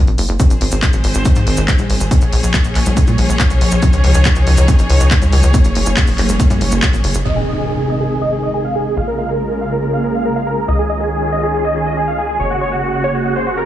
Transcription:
0.07 analog synth bass G#1, closed hi-hat
0.18 analog synth bass F#1, open hi-hat
0.29 analog synth bass F#1, closed hi-hat
0.40 string section D#3 G#3 C4 G#4 C5, kick, closed hi-hat, cabasa
0.50 analog synth bass G#1, closed hi-hat, cabasa
0.61 analog synth bass G#1, open hi-hat
0.71 analog synth bass G#1, closed hi-hat, cabasa
0.82 kick, clap, closed hi-hat, cabasa
0.93 analog synth bass G#1, closed hi-hat, cabasa
1.04 analog synth bass G#1, open hi-hat
1.15 analog synth bass G#1, closed hi-hat, cabasa
1.25 kick, closed hi-hat, cabasa
1.35 analog synth bass G#2, closed hi-hat, cabasa
1.47 analog synth bass G#1, open hi-hat
1.57 analog synth bass G#1, closed hi-hat, cabasa
1.68 kick, clap, closed hi-hat, cabasa
1.78 analog synth bass A#1, closed hi-hat, high conga, cabasa
1.90 analog synth bass G#1, open hi-hat
2.00 analog synth bass G#1, closed hi-hat, cabasa
2.11 string section F3 A#3 C#4 C#5, kick, closed hi-hat, cabasa
2.21 analog synth bass A#1, closed hi-hat, cabasa
2.33 analog synth bass A#1, open hi-hat
2.43 analog synth bass A#1, closed hi-hat, cabasa
2.54 kick, clap, closed hi-hat, cabasa
2.64 analog synth bass A#1, closed hi-hat, cabasa
2.75 analog synth bass A#1, clap, open hi-hat
2.86 analog synth bass A#1, closed hi-hat, high conga, cabasa
2.97 kick, closed hi-hat, cabasa
3.07 analog synth bass A#2, closed hi-hat, high conga, cabasa
3.18 analog synth bass A#1, open hi-hat
3.29 analog synth bass A#1, closed hi-hat, cabasa
3.40 kick, clap, closed hi-hat, cabasa
3.50 analog synth bass C2, closed hi-hat, cabasa
3.61 analog synth bass A#1, open hi-hat
3.71 analog synth bass A#1, cabasa
3.82 string section D#4, kick, closed hi-hat, cabasa
3.93 analog synth bass C#2, closed hi-hat, cabasa
4.04 analog synth bass C#2, open hi-hat
4.14 analog synth bass C#2, closed hi-hat, cabasa
4.25 kick, clap, closed hi-hat, cabasa
4.35 analog synth bass C#2, closed hi-hat, cabasa
4.47 analog synth bass C#2, open hi-hat
4.57 analog synth bass C#2, closed hi-hat, cabasa
4.68 kick, closed hi-hat, cabasa
4.79 analog synth bass G#1, closed hi-hat, cabasa
4.90 analog synth bass C#2, open hi-hat
5.00 analog synth bass C#2, closed hi-hat, cabasa
5.11 kick, clap, closed hi-hat, cabasa
5.22 analog synth bass D#2, closed hi-hat, high conga, cabasa
5.32 analog synth bass C#2, open hi-hat
5.43 analog synth bass C#2, closed hi-hat, cabasa
5.54 string section F#3 A#3 C#4, kick, closed hi-hat, cabasa
5.64 analog synth bass F#1, closed hi-hat, cabasa
5.75 analog synth bass F#1, open hi-hat
5.86 analog synth bass F#1, closed hi-hat, cabasa
5.97 kick, clap, closed hi-hat, cabasa
6.07 analog synth bass F#1, open hi-hat, cabasa
6.18 analog synth bass F#1, clap, open hi-hat
6.29 analog synth bass F#1, closed hi-hat, high conga, cabasa
6.40 kick, closed hi-hat, cabasa
6.50 analog synth bass F#2, closed hi-hat, high conga, cabasa
6.61 analog synth bass F#1, open hi-hat
6.72 analog synth bass F#1, closed hi-hat, cabasa
6.82 kick, clap, closed hi-hat, cabasa
6.93 analog synth bass G#1, closed hi-hat, cabasa
7.04 analog synth bass F#1, open hi-hat
7.14 analog synth bass F#1, closed hi-hat, cabasa
7.25 analog synth bass G#1, string section C3 D#3 G#3 D#4 G#4, supersaw synth D#5, impact
7.36 supersaw synth G#4
7.47 supersaw synth D#5
7.58 supersaw synth G#4
7.68 supersaw synth G#4
7.79 supersaw synth G#4
7.90 supersaw synth D#5
8.00 supersaw synth G#4
8.11 supersaw synth G#4
8.22 supersaw synth D#5
8.32 supersaw synth G#4
8.43 supersaw synth D#5
8.54 supersaw synth G#4
8.65 supersaw synth F5
8.75 supersaw synth G#4
8.86 supersaw synth G#4
8.97 analog synth bass A#1, string section C#3 A#3 F4, supersaw synth F5
9.08 supersaw synth A#4
9.18 supersaw synth F5
9.29 supersaw synth A#4
9.40 supersaw synth A#4
9.50 supersaw synth A#4
9.61 supersaw synth F5
9.72 supersaw synth A#4
9.82 supersaw synth A#4
9.93 supersaw synth F5
10.04 supersaw synth A#4
10.15 supersaw synth F5
10.25 supersaw synth A#4
10.36 supersaw synth F5
10.47 supersaw synth A#4
10.57 supersaw synth A#4
10.68 analog synth bass C#2, string section D#3 C#4 F4, supersaw synth D#5
10.79 supersaw synth G#4
10.89 supersaw synth D#5
11.00 supersaw synth G#4
11.11 supersaw synth G#4
11.22 supersaw synth G#4
11.32 supersaw synth D#5
11.43 supersaw synth G#4
11.54 supersaw synth G#4
11.65 supersaw synth D#5
11.75 supersaw synth G#4
11.86 supersaw synth D#5
11.97 supersaw synth G#4
12.08 supersaw synth F5
12.18 supersaw synth G#4
12.29 supersaw synth G#4
12.40 analog synth bass F#1, string section C#3 A#3 F#4 G#4, supersaw synth C#5
12.50 supersaw synth F#4
12.61 supersaw synth C#5
12.72 supersaw synth F#4
12.83 supersaw synth F#4
12.93 supersaw synth F#4
13.04 supersaw synth C#5
13.14 supersaw synth F#4
13.25 supersaw synth F#4
13.36 supersaw synth C5
13.47 supersaw synth F#4
13.57 supersaw synth A#4

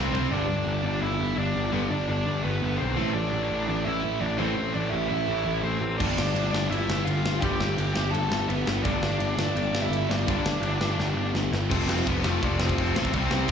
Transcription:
Already playing: overdriven electric guitar C3 G3 C4, distorted electric guitar C3 G3 C4, lead electric guitar C4 C5
0.11 picked electric bass C2, overdriven electric guitar C3 G3 C4, floor tom
0.30 picked electric bass G1, overdriven electric guitar G2 D3 G3, lead electric guitar D4 D5
0.48 picked electric bass G1
0.66 picked electric bass G1
0.83 picked electric bass G1, lead electric guitar D4 D5
1.00 picked electric bass G1, lead electric guitar E4 E5
1.19 picked electric bass G1
1.36 picked electric bass G1, lead electric guitar D4 D5
1.55 picked electric bass G1
1.72 picked electric bass G1, overdriven electric guitar G2 D3 G3, lead electric guitar B3 B4
1.90 picked electric bass G1, lead electric guitar D4 D5
2.08 picked electric bass G1, lead electric guitar D4 D5
2.26 picked electric bass G1
2.44 picked electric bass G1, lead electric guitar B3 B4
2.63 picked electric bass G1
2.77 picked electric bass B1, lead electric guitar C4 C5
2.97 picked electric bass A1, overdriven electric guitar A2 E3 A3
3.15 picked electric bass A1, lead electric guitar D4 D5
3.33 picked electric bass A1
3.51 picked electric bass A1
3.68 picked electric bass A1, lead electric guitar D4 D5
3.85 picked electric bass A1, lead electric guitar E4 E5
4.04 picked electric bass A1
4.20 picked electric bass A1, lead electric guitar D4 D5
4.38 picked electric bass A1, overdriven electric guitar A2 E3 A3, lead electric guitar C4 C5
4.57 picked electric bass A1
4.74 picked electric bass A1, lead electric guitar D4 D5
4.90 picked electric bass A1, lead electric guitar E4 E5
5.08 picked electric bass A1, lead electric guitar E4 E5
5.28 picked electric bass A1
5.46 picked electric bass A1
5.63 picked electric bass A1, lead electric guitar C4 C5
5.81 picked electric bass A1
5.98 picked electric bass G1, overdriven electric guitar G2 D3 G3, lead electric guitar D4 D5, kick, crash
6.17 picked electric bass G1, snare
6.35 picked electric bass G1, ride
6.51 picked electric bass G1, lead electric guitar D4 D5, snare
6.70 picked electric bass G1, lead electric guitar E4 E5, ride
6.89 picked electric bass G1, snare
7.05 picked electric bass G1, lead electric guitar F4 F5, ride
7.24 picked electric bass G1, snare
7.40 picked electric bass G1, overdriven electric guitar G2 D3 G3, lead electric guitar G4 G5, kick, ride
7.59 picked electric bass G1, snare
7.77 picked electric bass G1, ride
7.94 picked electric bass G1, lead electric guitar G4 G5, snare
8.10 picked electric bass G1, lead electric guitar A4 A5
8.14 ride
8.30 picked electric bass G1, snare
8.48 picked electric bass G1, lead electric guitar B3 B4, ride
8.67 picked electric bass G1, snare
8.83 picked electric bass G1, overdriven electric guitar G2 D3 G3, lead electric guitar D4 D5, kick, ride
9.02 picked electric bass G1, snare
9.20 picked electric bass G1, ride
9.36 picked electric bass G1, lead electric guitar D4 D5, snare
9.55 picked electric bass G1, ride
9.73 picked electric bass G1, snare
9.81 lead electric guitar E4 E5
9.90 picked electric bass G1, ride
10.09 picked electric bass G1, lead electric guitar D4 D5, snare
10.27 picked electric bass G1, overdriven electric guitar G2 D3 G3, kick, ride
10.45 picked electric bass G1, snare
10.61 picked electric bass G1, ride
10.80 picked electric bass G1, snare
10.99 picked electric bass G1, snare
11.16 picked electric bass G1
11.34 picked electric bass G1, snare
11.52 picked electric bass G1, snare
11.70 picked electric bass F1, overdriven electric guitar F2 C3 F3, lead electric guitar C4 C5, kick, crash
11.87 picked electric bass F1, snare
12.06 picked electric bass F1, overdriven electric guitar F2 C3 F3, lead electric guitar B3 B4, kick, crash
12.23 picked electric bass F1, overdriven electric guitar F2 C3 F3, lead electric guitar A3, snare
12.27 lead electric guitar A4
12.41 picked electric bass F1, overdriven electric guitar F2 C3 F3, lead electric guitar D4 D5, kick, crash
12.59 picked electric bass F1, lead electric guitar C4 C5, snare
12.69 kick
12.78 picked electric bass F1, overdriven electric guitar F2 C3 F3, kick, crash
12.95 picked electric bass A1, overdriven electric guitar F2 C3 F3, lead electric guitar C4 C5, snare
13.05 kick
13.13 picked electric bass C2, overdriven electric guitar C3 G3 C4, lead electric guitar C4 C5, kick, crash
13.31 picked electric bass C2, snare
13.48 crash

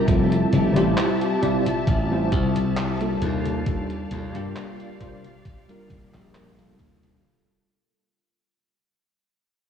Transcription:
Already playing: string section G4
0.07 slap bass F1, tine electric piano G3 C4 E4 F4 A4, string section E5 A5, kick, closed hi-hat, high conga
0.32 closed hi-hat
0.53 slap bass F1, closed hi-hat, high conga
0.76 slap bass A1, tine electric piano G3 C4 E4 F4 G4, closed hi-hat, high conga
0.98 clap, closed hi-hat, high conga
1.22 closed hi-hat
1.41 tine electric piano G3 C4 E4 F4 D5, closed hi-hat, high conga
1.66 closed hi-hat, high conga
1.87 slap bass A1, kick, closed hi-hat, high conga
2.10 tine electric piano G3 C4 E4 F4 C5
2.32 slap bass C2, kick, closed hi-hat, high conga
2.56 closed hi-hat, high conga
2.77 clap, closed hi-hat, high conga
3.00 tine electric piano G3 A#3 D4 F4 A4, closed hi-hat
3.21 slap bass D#2, string section G4 D5 F5, closed hi-hat, high conga
3.45 closed hi-hat, high conga
3.66 tine electric piano G3 A#3 D4 F4 A4, kick, closed hi-hat, high conga
3.90 closed hi-hat
4.11 slap bass D#2, closed hi-hat, high conga
4.34 slap bass G2, tine electric piano G3 A#3 D4 F4 G4, closed hi-hat, high conga
4.56 clap, closed hi-hat, high conga
4.80 closed hi-hat
5.00 tine electric piano G3 A#3 D4 F4 C5, kick, closed hi-hat, high conga
5.24 closed hi-hat, high conga
5.45 kick, closed hi-hat, high conga
5.68 tine electric piano G3 A#3 D4 F4 A#4, closed hi-hat
5.90 kick, closed hi-hat, high conga
6.14 slap bass A#1, clap, closed hi-hat, high conga
6.35 clap, closed hi-hat, high conga
6.58 tine electric piano G3 A#3 D4 F4 A4, closed hi-hat
6.79 slap bass D#2, kick, closed hi-hat, high conga
7.03 closed hi-hat, high conga

